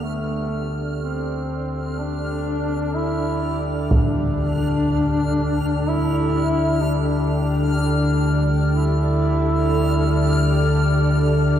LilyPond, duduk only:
\new Staff \with { instrumentName = "Duduk" } { \time 4/4 \key d \minor \tempo 4 = 62 a8 r8 c'4 d'4 e'8. r16 | d'2 e'4 d'4 | d'8 r8 e'2 r4 | }